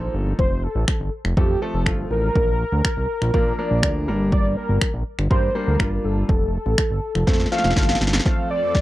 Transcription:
Already playing: F3 A#3 D#4 A4 C5
0.14 G1
0.39 F1 C5, kick
0.63 A4
0.75 A1
0.88 finger snap, kick
1.00 G1
1.25 F1, finger snap
1.37 F2 F3 A3 C4 G4 A4, kick
1.62 F3 A3 C4 A4
1.74 F1
1.86 G1 F3 A3 C4 F4, finger snap, kick
2.11 A1 A#4
2.35 A#1, kick
2.72 D2
2.85 finger snap, kick
2.97 C2
3.22 A#1, finger snap
3.34 A#2 F3 A#3 D4 A#4, kick
3.58 F3 A#3 D4 A#4 D5
3.71 A#1
3.83 D2 F3 A#3 D4 A#4, finger snap, kick
4.08 G1 G3 A#3 D4 A#4
4.32 D5, kick
4.57 A#4
4.69 G1
4.81 finger snap, kick
4.94 A#1
5.19 G1, finger snap
5.30 G2 G3 A#3 D4 A#4 C5, kick
5.55 G3 A#3 D4 A#4 C5
5.68 D2
5.79 G1 G3 A#3 D4 F4, finger snap, kick
6.05 G1 A4
6.29 F1, kick
6.66 A1
6.78 finger snap, kick
6.91 G1
7.15 F1, finger snap
7.27 F2 F3 A3 C4 A4, kick, snare
7.33 snare
7.40 snare
7.46 snare
7.52 F3 A3 C4 A4 F5, snare
7.58 snare
7.64 F1, snare
7.70 snare
7.76 G1 F3 A3 C4 A4 A5, kick, snare
7.83 snare
7.89 snare
7.95 snare
8.01 G1 F5, snare
8.07 snare
8.13 snare
8.19 snare
8.25 F2 F3 A3 C4 A4 F5, kick, snare
8.51 D5
8.75 kick, snare

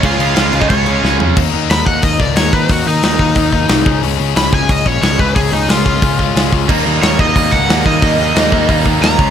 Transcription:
0.02 C#2 C#3 G#3 C#4 F4 F5, kick, crash
0.19 C#2 C#3 G#3 C#4 F4, crash
0.35 C#2 C#3 G#3 C#4 F4 F5, snare, crash
0.53 C#2 C#3 G#3 C#4 F4, crash
0.60 D#4 D#5, kick
0.69 C#2 C#3 G#3 C#4 F4 C#5, kick, crash
0.86 C#3 G#3 C#4 F4, crash
1.02 C#2 C#3 G#3 C#4 F4, snare
1.19 F2 C#3 G#3 C#4 F4, floor tom
1.36 D#2 D#3 A#3 D#4, kick, crash
1.52 D#2 D#3 A#3 D#4
1.69 D#2 D#3 A#3 D#4 B5, snare, open hi-hat
1.86 D#2 D#3 A#3 D#4 F#5, kick
2.02 D#2 D#3 A#3 D#4 D#5, kick, open hi-hat
2.19 C#2 D#3 A#3 D#4 D5, kick
2.36 D#2 D#3 A#3 D#4 C#5, snare, open hi-hat
2.53 D#2 D#3 A#3 D#4 B4, kick
2.69 D#2 D#3 A#3 D#4 F#4, kick, open hi-hat
2.86 D#2 D#3 A#3 D#4
3.03 D#2 D#3 A#3 D#4, snare, open hi-hat
3.19 D#2 D#3 A#3 D#4, kick
3.35 D#2 D#3 A#3 D#4, kick, open hi-hat
3.53 D#3 A#3 D#4, kick
3.69 C2 D#3 A#3 D#4, snare, open hi-hat
3.86 C#2 C#3 G#3 C#4, kick
4.02 C#2 C#3 G#3 C#4, open hi-hat
4.18 C#2 C#3 G#3 C#4
4.36 C#2 C#3 G#3 C#4 B5, snare, open hi-hat
4.52 C#2 C#3 G#3 C#4 G#5, kick
4.69 C#2 C#3 G#3 C#4 D#5, kick, open hi-hat
4.85 A#1 C#3 G#3 C#4 C#5, kick
5.02 C#2 C#3 G#3 C#4 C#5, snare, open hi-hat
5.19 C#2 C#3 G#3 C#4 B4, kick
5.36 C#2 C#3 G#3 C#4 G#4, kick, open hi-hat
5.52 C#2 C#3 G#3 C#4 D#4
5.69 C#2 C#3 G#3 C#4 F4, snare, open hi-hat
5.85 C#2 C#3 G#3 C#4, kick
6.02 C#2 C#3 G#3 C#4, kick, open hi-hat
6.18 C#3 G#3 C#4, kick
6.35 C#2 C#3 G#3 C#4, snare, open hi-hat
6.52 C#2 C#3 G#3 C#4, kick
6.68 D#2 D#3 G3 A#3 D#4, kick, crash
6.86 D#2 D#3 G3 A#3 D#4
7.02 D#2 D#3 G3 A#3 D#4 C#5, snare, open hi-hat
7.19 D#2 D#3 G3 A#3 D#4 D#5, kick
7.35 D#2 D#3 G3 A#3 D#4, kick, open hi-hat
7.52 C#2 D#3 G3 A#3 D#4 F#5, kick
7.69 D#2 D#3 G3 A#3 D#4, snare, open hi-hat
7.85 D#2 D#3 G3 A#3 D#4 D#5, kick
8.02 D#2 D#3 G3 A#3 D#4, kick, open hi-hat
8.19 D#2 D#3 G3 A#3 D#4
8.35 D#2 D#3 G3 A#3 D#4, snare, open hi-hat
8.51 D#2 D#3 G3 A#3 D#4, kick
8.69 D#2 D#3 G3 A#3 D#4, kick, open hi-hat
8.85 D#3 G3 A#3 D#4, kick
9.01 D#2 D#3 G3 A#3 D#4 A#5, snare, open hi-hat
9.18 C#2 C#3 G#3 C#4 F4, kick

